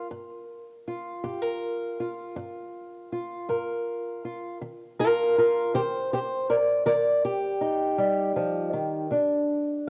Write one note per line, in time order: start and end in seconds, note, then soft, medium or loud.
0.00 1.23 A#4 medium
0.11 0.78 G2 medium
0.88 1.99 F4 soft
1.24 1.91 G2 medium
1.24 1.42 G4 soft
1.42 3.48 A#4 soft
2.00 3.11 F4 soft
2.36 3.03 G2 medium
3.12 4.24 F4 soft
3.49 4.16 G2 medium
3.49 4.57 A#4 soft
4.25 4.57 F4 soft
4.61 5.29 D#3 medium
4.99 5.36 F4 medium
4.99 5.37 A#4 medium
5.38 5.74 F4 medium
5.38 5.74 A#4 medium
5.74 6.41 D#3 medium
5.74 5.80 G4 medium
5.74 6.12 C5 medium
6.13 6.18 G4 medium
6.13 6.50 C5 medium
6.50 6.55 A#4 medium
6.50 6.85 D5 medium
6.86 7.53 D#3 medium
6.86 6.92 A#4 medium
6.86 7.23 D5 medium
7.25 9.11 G4 medium
7.61 9.06 D#4 soft
7.98 8.36 G3 medium
8.36 8.73 F3 medium
8.73 9.10 D#3 medium
9.11 9.78 D3 medium
9.11 9.89 D4 soft